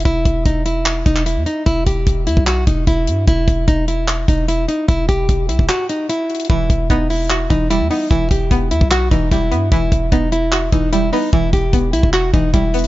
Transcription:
<<
  \new Staff \with { instrumentName = "Nylon-string guitar" } { \time 4/4 \key e \minor \tempo 4 = 149 e'4 dis'8 e'4 dis'8 e'8 dis'8 | e'8 g'4 e'8 fis'8 dis'8 e'4 | e'4 dis'8 e'4 dis'8 e'8 dis'8 | e'8 g'4 e'8 fis'8 dis'8 e'4 |
e'4 dis'8 e'4 dis'8 e'8 dis'8 | e'8 g'4 e'8 fis'8 dis'8 e'4 | e'4 dis'8 e'4 dis'8 e'8 dis'8 | e'8 g'4 e'8 fis'8 dis'8 e'4 | }
  \new Staff \with { instrumentName = "Synth pluck" } { \time 4/4 \key e \minor r1 | r1 | r1 | r1 |
e4 b4 fis'8 e8 g8 b8 | e4 b4 fis'8 e8 g8 b8 | e4 b4 fis'8 e8 g8 b8 | e4 b4 fis'8 e8 g8 b8 | }
  \new Staff \with { instrumentName = "808-style bass" } { \clef bass \time 4/4 \key e \minor e,,8 e,,8 e,,4. e,,8. e,16 r8 | e,,8 e,,8 e,,8 e,16 b,,8. e,,8 e,,8 g,8 | e,,8 e,,8 e,,4. e,,4 r8 | e,,8 e,,8 e,,8 b,,16 e,,16 r2 |
e,,8 e,,8 e,,4. e,,8. e,16 r8 | e,,8 e,,8 e,,8 e,16 b,,8. e,,8 e,,8 g,8 | e,,8 e,,8 e,,4. e,,4 r8 | e,,8 e,,8 e,,8 b,,16 e,,8. e,,8 e,,4 | }
  \new DrumStaff \with { instrumentName = "Drums" } \drummode { \time 4/4 <hh bd>8 <hh bd>8 <hh bd>8 hh8 <hc hh>8 <hh bd>16 hc16 hh8 hh8 | <hh bd>8 <hh bd>8 <hh bd>8 hh16 bd16 <hc hh>8 <hh bd>8 <hh bd>8 hh8 | <hh bd>8 <hh bd>8 <hh bd>8 hh8 <hc hh>8 <hh bd>8 hh8 hh8 | <hh bd>8 <hh bd>8 <hh bd>8 hh16 bd16 <hc hh>8 hh8 hh8 hh32 hh32 hh32 hh32 |
<hh bd>8 <hh bd>8 <hh bd>8 hho8 <hc hh>8 <hh bd>8 hh8 hho8 | <hh bd>8 <hh bd>8 <hh bd>8 hh16 bd16 <hc hh>8 <hh bd>8 <hh bd>8 hh8 | <hh bd>8 <hh bd>8 <hh bd>8 hh8 <hc hh>8 <hh bd>8 hh8 hho8 | <hh bd>8 <hh bd>8 <hh bd>8 hh16 bd16 <hc hh>8 <hh bd>8 <hh bd>8 <hh hho>32 hh32 hh16 | }
>>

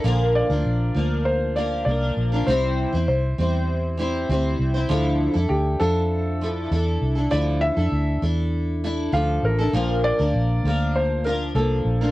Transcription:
<<
  \new Staff \with { instrumentName = "Felt piano" } { \time 4/4 \key d \minor \tempo 4 = 99 bes'8 d''4. c''8 d''8 d''4 | c''4 c''2~ c''8 r8 | r4 g'8 a'2 r8 | d''8 e''4 r4. f''8 bes'8~ |
bes'8 d''4. c''8 bes'8 a'4 | }
  \new Staff \with { instrumentName = "Steel-string acoustic guitar" } { \time 4/4 \key d \minor <bes, d f bes d' bes'>8. <f bes d' bes'>8. <f bes d' bes'>4 <f bes d' bes'>8 <f bes d' bes'>8. <f bes d' bes'>16 | <c g c' e' c''>8. <c' e' c''>8. <g c' e' c''>4 <g c' e' c''>8 <g c' e' c''>8. <c' e' c''>16 | <d f d' e' a'>8. <d' e' a'>8. <f d' e' a'>4 <f d' e' a'>8 <d' e' a'>8. <d' e' a'>16 | <d f d' e' a'>8. <d' e' a'>8. <d' e' a'>4 <d' e' a'>8 <f d' a'>8. <d' e' a'>16 |
<bes, d f bes d' bes'>8. <f bes d' bes'>8. <f bes d' bes'>4 <f bes d' bes'>8 <f bes d'>8. <f bes d' bes'>16 | }
  \new Staff \with { instrumentName = "Fingered electric bass" } { \clef bass \time 4/4 \key d \minor bes,,8. d,16 bes,,8 d,4. c,8 bes,,8 | c,8. e,16 c,8 e,4. d,8 c,8 | d,8. f,16 d,8 f,4. e,8 c,8 | d,8. f,16 d,8 e,4. d,8 a,,8 |
bes,,8. d,16 bes,,8 d,4. c,8 bes,,8 | }
>>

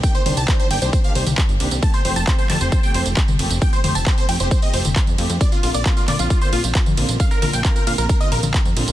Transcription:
<<
  \new Staff \with { instrumentName = "Supersaw synth" } { \time 4/4 \key f \mixolydian \tempo 4 = 134 g''16 c''16 c''16 a''16 c''16 c''16 g''16 c''16 c''16 f''16 c''16 r4 r16 | a''16 c''16 c''16 a''16 c''16 c''16 a''16 c''16 c''16 g''16 c''16 r4 r16 | g''16 c''16 c''16 a''16 c''16 c''16 g''16 c''16 c''16 ees''16 c''16 r4 r16 | d''16 f'16 f'16 d''16 f'16 f'16 d''16 f'16 f'16 c''16 f'16 r4 r16 |
f''16 bes'16 bes'16 g''16 bes'16 bes'16 f''16 bes'16 bes'16 ees''16 bes'16 r4 r16 | }
  \new Staff \with { instrumentName = "String section" } { \time 4/4 \key f \mixolydian <ees bes d' g'>8 <ees bes d' g'>8 <ees bes d' g'>8 <ees bes d' g'>16 <ees bes d' g'>8 <ees bes d' g'>8 r8. <ees bes d' g'>8 | <f a c' g'>8 <f a c' g'>8 <f a c' g'>8 <f a c' g'>16 <f a c' g'>8 <f a c' g'>8 r8. <f a c' g'>8 | <f a c' g'>8 <f a c' g'>8 <f a c' g'>8 <f a c' g'>16 <f a c' g'>8 <f a c' g'>8 r8. <f a c' g'>8 | <d bes c' f'>8 <d bes c' f'>8 <d bes c' f'>8 <d bes c' f'>16 <d bes c' f'>8 <d bes c' f'>8 r8. <d bes c' f'>8 |
<d bes c' f'>8 <d bes c' f'>8 <d bes c' f'>8 <d bes c' f'>16 <d bes c' f'>8 <d bes c' f'>8 r8. <d bes c' f'>8 | }
  \new Staff \with { instrumentName = "Analog synth bass" } { \clef bass \time 4/4 \key f \mixolydian r8 c,16 c,16 r8 g,,16 c,16 r8 c,16 c,16 r16 g,,16 c,16 c,16 | r8 f,,16 f,,16 r8 f,16 f,,16 r8 f,,16 f,,16 r16 c,16 f,,16 f,,16 | r8 f,,16 f,,16 r8 f,16 f,,16 r8 f,,16 f,,16 r16 f,16 f,16 f,16 | r8 bes,,16 bes,,16 r8 bes,16 bes,,16 r8 bes,,16 bes,,16 r16 f,16 bes,,16 bes,,16 |
r8 bes,,16 bes,,16 r8 bes,16 bes,,16 r8 bes,,16 bes,,16 r16 f,16 bes,,16 bes,,16 | }
  \new DrumStaff \with { instrumentName = "Drums" } \drummode { \time 4/4 <hh bd tamb>16 <hh tamb>16 <hho cymr toml>16 <hh tamb>16 <hc hh bd tamb>16 <hh tamb>16 <hho cymr>16 <hh tamb>16 <hh bd tamb>16 <hh tamb>16 <hho cymr>16 <hh tamb toml>16 <hc hh bd tamb>16 <hh tamb>16 <hho cymr>16 <hh tamb>16 | <hh bd tamb>16 <hh tamb>16 <hho cymr>16 <hh tamb>16 <hc hh bd tamb>16 <hh tamb>16 <hc hho cymr toml>16 <hh tamb>16 <hh bd tamb>16 <hh tamb>16 <hho cymr>16 <hh tamb>16 <hc hh bd tamb>16 <hh tamb toml>16 <hho cymr>16 <hh tamb>16 | <hh bd tamb>16 <hh tamb>16 <hho cymr toml>16 <hh tamb>16 <hc hh bd tamb>16 <hh tamb>16 <hho cymr>16 <hh tamb>16 <hh bd tamb>16 <hho tamb>16 <hho cymr>16 <hh tamb toml>16 <hc hh bd tamb>16 <hh tamb>16 <hho cymr>16 <hh tamb>16 | <hh bd tamb>16 <hh tamb>16 <hho cymr>16 <hh tamb>16 <hc hh bd tamb>16 <hh tamb>16 <hc hho cymr toml>16 <hh tamb>16 <hh bd tamb>16 <hh tamb>16 <hho cymr>16 <hh tamb>16 <hc hh bd tamb>16 <hh tamb toml>16 <hho cymr>16 <hh tamb>16 |
<hh bd tamb>16 <hh tamb>16 <hho cymr toml>16 <hh tamb>16 <hc hh bd tamb>16 <hh tamb>16 <hho cymr>16 <hh tamb>16 <hh bd tamb>16 <hh tamb>16 <hho cymr>16 <hh tamb toml>16 <hc hh bd tamb>16 <hh tamb>16 <hho cymr>16 <hh tamb>16 | }
>>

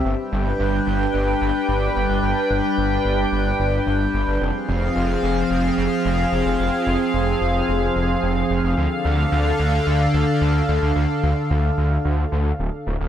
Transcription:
<<
  \new Staff \with { instrumentName = "Analog synth pad" } { \time 4/4 \key g \mixolydian \tempo 4 = 110 <g d' b' g''>1~ | <g d' b' g''>1 | <f c' aes' f''>1~ | <f c' aes' f''>1 |
<d d' a' f''>1~ | <d d' a' f''>1 | }
  \new Staff \with { instrumentName = "Detuned saw bass" } { \clef bass \time 4/4 \key g \mixolydian g,,16 r16 g,,16 r16 g,,16 r16 g,,16 r16 g,,16 r16 g,,16 r16 g,,16 r16 g,,16 g,,16 | g,,16 r16 g,,16 r16 g,,16 r16 g,,16 r16 g,,16 r16 g,,16 r16 g,,16 r16 g,,16 g,,16 | f,,16 r16 f,,16 r16 f,,16 r16 f,,16 r16 f,,16 r16 f,,16 r16 f,,16 r16 f,,16 f,,16 | f,,16 r16 f,,16 r16 f,,16 r16 f,,16 r16 f,,16 r16 f,,16 r16 f,,16 r16 f,,16 f,,16 |
d,16 r16 d,16 r16 d,16 r16 d,16 r16 d,16 r16 d,16 r16 d,16 r16 d,16 d,16 | d,16 r16 d,16 r16 d,16 r16 d,16 r16 d,16 r16 d,16 r16 d,,16 r16 d,,16 d,,16 | }
>>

